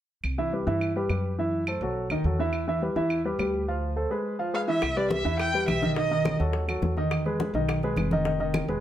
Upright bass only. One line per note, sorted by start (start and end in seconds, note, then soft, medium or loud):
0.24 0.64 C2 medium
0.67 1.07 G2 medium
1.09 1.76 F#2 medium
1.81 2.08 B1 medium
2.10 2.23 D#2 medium
2.24 2.91 E2 medium
2.96 3.36 E2 medium
3.39 4.05 D2 medium
4.82 5.22 C2 medium
5.25 5.65 E2 medium
5.68 6.34 B1 medium
6.40 6.80 D#2 medium
6.82 7.49 E2 medium
7.54 7.94 B1 medium
7.97 8.63 F1 medium
8.68 8.80 E1 medium